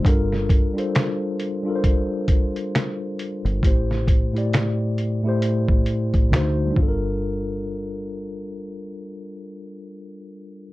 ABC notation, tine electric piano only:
X:1
M:4/4
L:1/16
Q:"Swing 16ths" 1/4=67
K:Gdor
V:1 name="Tine electric piano"
[G,DFAB]2 z [G,DFAc]3 z [G,DFABc]6 z3 | [A,,A,EGc]2 z [A,,A,EGd]3 z [A,,A,EGc]4- [A,,A,EGc] [D,A,_E^Fc]2 [G,D=FAB]2- | [G,DFAB]16 |]